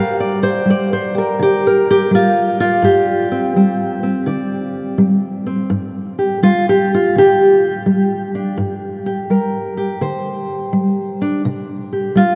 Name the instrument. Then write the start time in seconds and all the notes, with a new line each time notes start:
steel-string acoustic guitar
Already playing: G2 G3 G4 A#4 F5
0.20 D5
0.42 G4 C5
0.66 G3
0.70 D5
0.93 C5
1.15 G4 A#4
1.39 D3 G4
1.67 A#4
1.91 G4
2.11 G3 F4
2.60 F4 D5
2.82 G2 G4
3.32 C4
3.56 G3 C4
4.03 C4
4.26 D3 D5
4.98 G3
5.46 C4
5.70 G2
6.19 G4
6.43 G3 F4
6.69 G4
6.94 F4
7.16 D3 G4
7.86 G3
8.35 D4
8.58 G2
9.06 G4
9.30 G3 A#4
9.77 G4
10.01 D3 C5
10.73 G3
11.22 D4
11.45 C3
11.93 G4
12.15 G3 F4